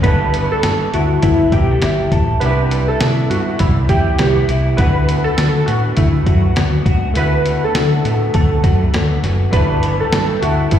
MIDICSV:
0, 0, Header, 1, 7, 480
1, 0, Start_track
1, 0, Tempo, 592885
1, 33, Time_signature, 4, 2, 24, 8
1, 8736, End_track
2, 0, Start_track
2, 0, Title_t, "Analog synth pad"
2, 0, Program_c, 0, 89
2, 7710, Note_on_c, 0, 88, 82
2, 7713, Note_on_c, 0, 79, 70
2, 7714, Note_on_c, 0, 59, 78
2, 7714, Note_on_c, 0, 81, 74
2, 8736, Note_off_c, 0, 59, 0
2, 8736, Note_off_c, 0, 79, 0
2, 8736, Note_off_c, 0, 81, 0
2, 8736, Note_off_c, 0, 88, 0
2, 8736, End_track
3, 0, Start_track
3, 0, Title_t, "Synth keys"
3, 0, Program_c, 1, 88
3, 25, Note_on_c, 1, 71, 104
3, 418, Note_on_c, 1, 69, 87
3, 425, Note_off_c, 1, 71, 0
3, 761, Note_on_c, 1, 66, 85
3, 764, Note_off_c, 1, 69, 0
3, 981, Note_off_c, 1, 66, 0
3, 992, Note_on_c, 1, 64, 82
3, 1230, Note_on_c, 1, 67, 78
3, 1240, Note_off_c, 1, 64, 0
3, 1680, Note_off_c, 1, 67, 0
3, 1945, Note_on_c, 1, 71, 108
3, 2332, Note_on_c, 1, 69, 89
3, 2346, Note_off_c, 1, 71, 0
3, 2648, Note_off_c, 1, 69, 0
3, 2671, Note_on_c, 1, 66, 87
3, 2896, Note_off_c, 1, 66, 0
3, 2908, Note_on_c, 1, 64, 86
3, 3018, Note_off_c, 1, 64, 0
3, 3151, Note_on_c, 1, 67, 82
3, 3602, Note_off_c, 1, 67, 0
3, 3862, Note_on_c, 1, 71, 109
3, 4244, Note_on_c, 1, 69, 92
3, 4265, Note_off_c, 1, 71, 0
3, 4582, Note_on_c, 1, 66, 85
3, 4599, Note_off_c, 1, 69, 0
3, 4831, Note_on_c, 1, 64, 84
3, 4837, Note_off_c, 1, 66, 0
3, 5073, Note_on_c, 1, 66, 74
3, 5081, Note_off_c, 1, 64, 0
3, 5523, Note_off_c, 1, 66, 0
3, 5804, Note_on_c, 1, 71, 105
3, 6186, Note_on_c, 1, 69, 89
3, 6196, Note_off_c, 1, 71, 0
3, 6738, Note_off_c, 1, 69, 0
3, 6748, Note_on_c, 1, 69, 80
3, 7440, Note_off_c, 1, 69, 0
3, 7711, Note_on_c, 1, 71, 111
3, 8098, Note_on_c, 1, 69, 90
3, 8110, Note_off_c, 1, 71, 0
3, 8437, Note_on_c, 1, 66, 89
3, 8446, Note_off_c, 1, 69, 0
3, 8679, Note_on_c, 1, 64, 79
3, 8684, Note_off_c, 1, 66, 0
3, 8736, Note_off_c, 1, 64, 0
3, 8736, End_track
4, 0, Start_track
4, 0, Title_t, "Upright piano"
4, 0, Program_c, 2, 0
4, 0, Control_c, 2, 64, 127
4, 16, Note_on_c, 2, 59, 59
4, 30, Note_on_c, 2, 62, 53
4, 42, Note_on_c, 2, 64, 51
4, 43, Control_c, 2, 64, 0
4, 55, Note_on_c, 2, 69, 69
4, 174, Control_c, 2, 64, 127
4, 1914, Note_off_c, 2, 59, 0
4, 1921, Note_off_c, 2, 62, 0
4, 1927, Note_off_c, 2, 64, 0
4, 1933, Note_off_c, 2, 69, 0
4, 1943, Note_on_c, 2, 59, 57
4, 1957, Note_on_c, 2, 62, 55
4, 1964, Control_c, 2, 64, 0
4, 1970, Note_on_c, 2, 64, 56
4, 1984, Note_on_c, 2, 67, 67
4, 2127, Control_c, 2, 64, 127
4, 3838, Note_off_c, 2, 59, 0
4, 3845, Note_off_c, 2, 62, 0
4, 3851, Note_off_c, 2, 64, 0
4, 3858, Note_on_c, 2, 57, 59
4, 3859, Note_off_c, 2, 67, 0
4, 3871, Note_on_c, 2, 59, 56
4, 3884, Note_on_c, 2, 64, 57
4, 3888, Control_c, 2, 64, 0
4, 3900, Note_on_c, 2, 66, 71
4, 4051, Control_c, 2, 64, 127
4, 5755, Note_off_c, 2, 57, 0
4, 5762, Note_off_c, 2, 59, 0
4, 5768, Note_off_c, 2, 64, 0
4, 5776, Note_off_c, 2, 66, 0
4, 5779, Note_on_c, 2, 57, 60
4, 5791, Note_on_c, 2, 59, 50
4, 5805, Note_on_c, 2, 64, 53
4, 5819, Note_on_c, 2, 66, 63
4, 7675, Note_off_c, 2, 57, 0
4, 7681, Note_off_c, 2, 59, 0
4, 7688, Note_off_c, 2, 64, 0
4, 7695, Note_off_c, 2, 66, 0
4, 7701, Note_on_c, 2, 57, 57
4, 7717, Note_on_c, 2, 59, 51
4, 7727, Control_c, 2, 64, 0
4, 7729, Note_on_c, 2, 62, 54
4, 7741, Note_on_c, 2, 64, 66
4, 7871, Control_c, 2, 64, 127
4, 8736, Note_off_c, 2, 57, 0
4, 8736, Note_off_c, 2, 59, 0
4, 8736, Note_off_c, 2, 62, 0
4, 8736, Note_off_c, 2, 64, 0
4, 8736, End_track
5, 0, Start_track
5, 0, Title_t, "Clean electric guitar"
5, 0, Program_c, 3, 27
5, 0, Note_on_c, 3, 58, 57
5, 0, Note_on_c, 3, 61, 69
5, 39, Note_on_c, 3, 55, 73
5, 47, Note_on_c, 3, 69, 62
5, 94, Note_off_c, 3, 58, 0
5, 94, Note_off_c, 3, 61, 0
5, 278, Note_on_c, 3, 59, 60
5, 506, Note_off_c, 3, 69, 0
5, 516, Note_on_c, 3, 69, 60
5, 758, Note_on_c, 3, 64, 59
5, 991, Note_off_c, 3, 59, 0
5, 994, Note_on_c, 3, 59, 61
5, 1232, Note_off_c, 3, 69, 0
5, 1235, Note_on_c, 3, 67, 61
5, 1383, Note_off_c, 3, 67, 0
5, 1383, Note_on_c, 3, 69, 52
5, 1477, Note_off_c, 3, 64, 0
5, 1480, Note_on_c, 3, 64, 54
5, 1708, Note_off_c, 3, 69, 0
5, 1718, Note_on_c, 3, 69, 56
5, 1959, Note_on_c, 3, 48, 73
5, 1960, Note_off_c, 3, 64, 0
5, 1963, Note_on_c, 3, 64, 68
5, 2014, Note_off_c, 3, 69, 0
5, 2199, Note_off_c, 3, 55, 0
5, 2202, Note_on_c, 3, 55, 56
5, 2430, Note_off_c, 3, 64, 0
5, 2439, Note_on_c, 3, 64, 58
5, 2678, Note_off_c, 3, 59, 0
5, 2682, Note_on_c, 3, 59, 57
5, 2905, Note_off_c, 3, 55, 0
5, 2915, Note_on_c, 3, 55, 65
5, 3151, Note_off_c, 3, 64, 0
5, 3161, Note_on_c, 3, 64, 66
5, 3396, Note_off_c, 3, 59, 0
5, 3399, Note_on_c, 3, 59, 63
5, 3623, Note_off_c, 3, 64, 0
5, 3633, Note_on_c, 3, 64, 62
5, 3874, Note_off_c, 3, 48, 0
5, 3875, Note_off_c, 3, 64, 0
5, 3878, Note_on_c, 3, 50, 78
5, 3882, Note_on_c, 3, 66, 61
5, 3933, Note_off_c, 3, 55, 0
5, 4117, Note_on_c, 3, 57, 61
5, 4141, Note_off_c, 3, 59, 0
5, 4342, Note_off_c, 3, 66, 0
5, 4352, Note_on_c, 3, 66, 66
5, 4594, Note_on_c, 3, 59, 64
5, 4832, Note_off_c, 3, 57, 0
5, 4835, Note_on_c, 3, 57, 66
5, 5064, Note_off_c, 3, 66, 0
5, 5074, Note_on_c, 3, 66, 61
5, 5310, Note_off_c, 3, 59, 0
5, 5313, Note_on_c, 3, 59, 62
5, 5544, Note_off_c, 3, 66, 0
5, 5554, Note_on_c, 3, 66, 62
5, 5792, Note_off_c, 3, 66, 0
5, 5793, Note_off_c, 3, 50, 0
5, 5796, Note_on_c, 3, 50, 76
5, 5802, Note_on_c, 3, 66, 62
5, 6038, Note_off_c, 3, 57, 0
5, 6042, Note_on_c, 3, 57, 62
5, 6268, Note_off_c, 3, 66, 0
5, 6277, Note_on_c, 3, 66, 63
5, 6514, Note_off_c, 3, 59, 0
5, 6517, Note_on_c, 3, 59, 62
5, 6755, Note_off_c, 3, 57, 0
5, 6758, Note_on_c, 3, 57, 67
5, 6984, Note_off_c, 3, 66, 0
5, 6993, Note_on_c, 3, 66, 57
5, 7239, Note_off_c, 3, 59, 0
5, 7242, Note_on_c, 3, 59, 53
5, 7472, Note_off_c, 3, 66, 0
5, 7482, Note_on_c, 3, 66, 57
5, 7723, Note_off_c, 3, 57, 0
5, 7726, Note_on_c, 3, 55, 75
5, 7731, Note_on_c, 3, 69, 65
5, 7777, Note_off_c, 3, 66, 0
5, 7961, Note_off_c, 3, 59, 0
5, 7964, Note_on_c, 3, 59, 62
5, 8189, Note_off_c, 3, 69, 0
5, 8199, Note_on_c, 3, 69, 64
5, 8441, Note_on_c, 3, 64, 58
5, 8465, Note_off_c, 3, 50, 0
5, 8682, Note_off_c, 3, 59, 0
5, 8685, Note_on_c, 3, 59, 67
5, 8736, Note_off_c, 3, 55, 0
5, 8736, Note_off_c, 3, 59, 0
5, 8736, Note_off_c, 3, 64, 0
5, 8736, Note_off_c, 3, 69, 0
5, 8736, End_track
6, 0, Start_track
6, 0, Title_t, "Fingered electric bass"
6, 0, Program_c, 4, 33
6, 33, Note_on_c, 4, 31, 90
6, 417, Note_off_c, 4, 31, 0
6, 518, Note_on_c, 4, 43, 98
6, 709, Note_off_c, 4, 43, 0
6, 759, Note_on_c, 4, 38, 80
6, 949, Note_off_c, 4, 38, 0
6, 996, Note_on_c, 4, 31, 94
6, 1187, Note_off_c, 4, 31, 0
6, 1230, Note_on_c, 4, 35, 81
6, 1424, Note_off_c, 4, 35, 0
6, 1475, Note_on_c, 4, 31, 84
6, 1667, Note_off_c, 4, 31, 0
6, 1712, Note_on_c, 4, 33, 78
6, 1905, Note_off_c, 4, 33, 0
6, 1957, Note_on_c, 4, 36, 90
6, 2341, Note_off_c, 4, 36, 0
6, 2436, Note_on_c, 4, 48, 89
6, 2628, Note_off_c, 4, 48, 0
6, 2673, Note_on_c, 4, 43, 78
6, 2866, Note_off_c, 4, 43, 0
6, 2917, Note_on_c, 4, 36, 90
6, 3109, Note_off_c, 4, 36, 0
6, 3150, Note_on_c, 4, 40, 85
6, 3344, Note_off_c, 4, 40, 0
6, 3393, Note_on_c, 4, 36, 83
6, 3586, Note_off_c, 4, 36, 0
6, 3633, Note_on_c, 4, 36, 92
6, 3826, Note_off_c, 4, 36, 0
6, 3874, Note_on_c, 4, 38, 96
6, 4259, Note_off_c, 4, 38, 0
6, 4356, Note_on_c, 4, 50, 94
6, 4548, Note_off_c, 4, 50, 0
6, 4598, Note_on_c, 4, 45, 79
6, 4789, Note_off_c, 4, 45, 0
6, 4835, Note_on_c, 4, 38, 93
6, 5028, Note_off_c, 4, 38, 0
6, 5071, Note_on_c, 4, 42, 77
6, 5266, Note_off_c, 4, 42, 0
6, 5319, Note_on_c, 4, 38, 86
6, 5510, Note_off_c, 4, 38, 0
6, 5552, Note_on_c, 4, 37, 84
6, 5746, Note_off_c, 4, 37, 0
6, 5801, Note_on_c, 4, 38, 99
6, 6183, Note_off_c, 4, 38, 0
6, 6273, Note_on_c, 4, 50, 95
6, 6467, Note_off_c, 4, 50, 0
6, 6515, Note_on_c, 4, 45, 70
6, 6708, Note_off_c, 4, 45, 0
6, 6760, Note_on_c, 4, 38, 84
6, 6951, Note_off_c, 4, 38, 0
6, 6994, Note_on_c, 4, 42, 89
6, 7187, Note_off_c, 4, 42, 0
6, 7234, Note_on_c, 4, 38, 87
6, 7427, Note_off_c, 4, 38, 0
6, 7474, Note_on_c, 4, 30, 82
6, 7667, Note_off_c, 4, 30, 0
6, 7715, Note_on_c, 4, 31, 100
6, 8100, Note_off_c, 4, 31, 0
6, 8196, Note_on_c, 4, 43, 95
6, 8388, Note_off_c, 4, 43, 0
6, 8436, Note_on_c, 4, 38, 77
6, 8629, Note_off_c, 4, 38, 0
6, 8680, Note_on_c, 4, 31, 84
6, 8736, Note_off_c, 4, 31, 0
6, 8736, End_track
7, 0, Start_track
7, 0, Title_t, "Drums"
7, 30, Note_on_c, 9, 42, 74
7, 32, Note_on_c, 9, 36, 93
7, 111, Note_off_c, 9, 42, 0
7, 113, Note_off_c, 9, 36, 0
7, 273, Note_on_c, 9, 42, 73
7, 354, Note_off_c, 9, 42, 0
7, 511, Note_on_c, 9, 42, 93
7, 512, Note_on_c, 9, 38, 103
7, 592, Note_off_c, 9, 42, 0
7, 593, Note_off_c, 9, 38, 0
7, 758, Note_on_c, 9, 42, 66
7, 839, Note_off_c, 9, 42, 0
7, 992, Note_on_c, 9, 42, 85
7, 997, Note_on_c, 9, 36, 84
7, 1073, Note_off_c, 9, 42, 0
7, 1078, Note_off_c, 9, 36, 0
7, 1231, Note_on_c, 9, 36, 79
7, 1233, Note_on_c, 9, 42, 60
7, 1312, Note_off_c, 9, 36, 0
7, 1314, Note_off_c, 9, 42, 0
7, 1470, Note_on_c, 9, 42, 78
7, 1475, Note_on_c, 9, 38, 94
7, 1551, Note_off_c, 9, 42, 0
7, 1556, Note_off_c, 9, 38, 0
7, 1713, Note_on_c, 9, 36, 77
7, 1714, Note_on_c, 9, 42, 62
7, 1794, Note_off_c, 9, 36, 0
7, 1795, Note_off_c, 9, 42, 0
7, 1953, Note_on_c, 9, 42, 70
7, 2034, Note_off_c, 9, 42, 0
7, 2197, Note_on_c, 9, 42, 78
7, 2278, Note_off_c, 9, 42, 0
7, 2433, Note_on_c, 9, 42, 89
7, 2434, Note_on_c, 9, 38, 107
7, 2514, Note_off_c, 9, 42, 0
7, 2515, Note_off_c, 9, 38, 0
7, 2678, Note_on_c, 9, 42, 70
7, 2759, Note_off_c, 9, 42, 0
7, 2908, Note_on_c, 9, 42, 84
7, 2916, Note_on_c, 9, 36, 80
7, 2989, Note_off_c, 9, 42, 0
7, 2997, Note_off_c, 9, 36, 0
7, 3150, Note_on_c, 9, 42, 59
7, 3151, Note_on_c, 9, 36, 77
7, 3231, Note_off_c, 9, 42, 0
7, 3232, Note_off_c, 9, 36, 0
7, 3388, Note_on_c, 9, 42, 76
7, 3393, Note_on_c, 9, 38, 104
7, 3469, Note_off_c, 9, 42, 0
7, 3474, Note_off_c, 9, 38, 0
7, 3633, Note_on_c, 9, 42, 67
7, 3714, Note_off_c, 9, 42, 0
7, 3871, Note_on_c, 9, 42, 80
7, 3873, Note_on_c, 9, 36, 98
7, 3952, Note_off_c, 9, 42, 0
7, 3954, Note_off_c, 9, 36, 0
7, 4118, Note_on_c, 9, 42, 83
7, 4199, Note_off_c, 9, 42, 0
7, 4354, Note_on_c, 9, 42, 88
7, 4355, Note_on_c, 9, 38, 114
7, 4435, Note_off_c, 9, 42, 0
7, 4436, Note_off_c, 9, 38, 0
7, 4597, Note_on_c, 9, 42, 66
7, 4678, Note_off_c, 9, 42, 0
7, 4830, Note_on_c, 9, 42, 81
7, 4836, Note_on_c, 9, 36, 80
7, 4911, Note_off_c, 9, 42, 0
7, 4917, Note_off_c, 9, 36, 0
7, 5071, Note_on_c, 9, 36, 74
7, 5072, Note_on_c, 9, 42, 60
7, 5152, Note_off_c, 9, 36, 0
7, 5153, Note_off_c, 9, 42, 0
7, 5312, Note_on_c, 9, 42, 76
7, 5317, Note_on_c, 9, 38, 102
7, 5393, Note_off_c, 9, 42, 0
7, 5398, Note_off_c, 9, 38, 0
7, 5552, Note_on_c, 9, 36, 77
7, 5554, Note_on_c, 9, 42, 63
7, 5633, Note_off_c, 9, 36, 0
7, 5635, Note_off_c, 9, 42, 0
7, 5792, Note_on_c, 9, 42, 79
7, 5873, Note_off_c, 9, 42, 0
7, 6036, Note_on_c, 9, 42, 73
7, 6117, Note_off_c, 9, 42, 0
7, 6274, Note_on_c, 9, 42, 93
7, 6275, Note_on_c, 9, 38, 107
7, 6355, Note_off_c, 9, 42, 0
7, 6356, Note_off_c, 9, 38, 0
7, 6518, Note_on_c, 9, 42, 65
7, 6599, Note_off_c, 9, 42, 0
7, 6752, Note_on_c, 9, 42, 82
7, 6758, Note_on_c, 9, 36, 83
7, 6833, Note_off_c, 9, 42, 0
7, 6839, Note_off_c, 9, 36, 0
7, 6993, Note_on_c, 9, 36, 80
7, 6993, Note_on_c, 9, 42, 62
7, 7074, Note_off_c, 9, 36, 0
7, 7074, Note_off_c, 9, 42, 0
7, 7235, Note_on_c, 9, 42, 75
7, 7240, Note_on_c, 9, 38, 96
7, 7316, Note_off_c, 9, 42, 0
7, 7321, Note_off_c, 9, 38, 0
7, 7479, Note_on_c, 9, 38, 31
7, 7479, Note_on_c, 9, 42, 65
7, 7559, Note_off_c, 9, 42, 0
7, 7560, Note_off_c, 9, 38, 0
7, 7714, Note_on_c, 9, 42, 75
7, 7715, Note_on_c, 9, 36, 92
7, 7795, Note_off_c, 9, 42, 0
7, 7796, Note_off_c, 9, 36, 0
7, 7957, Note_on_c, 9, 42, 75
7, 8038, Note_off_c, 9, 42, 0
7, 8197, Note_on_c, 9, 42, 89
7, 8198, Note_on_c, 9, 38, 114
7, 8278, Note_off_c, 9, 42, 0
7, 8279, Note_off_c, 9, 38, 0
7, 8440, Note_on_c, 9, 42, 68
7, 8521, Note_off_c, 9, 42, 0
7, 8673, Note_on_c, 9, 42, 79
7, 8679, Note_on_c, 9, 36, 83
7, 8736, Note_off_c, 9, 36, 0
7, 8736, Note_off_c, 9, 42, 0
7, 8736, End_track
0, 0, End_of_file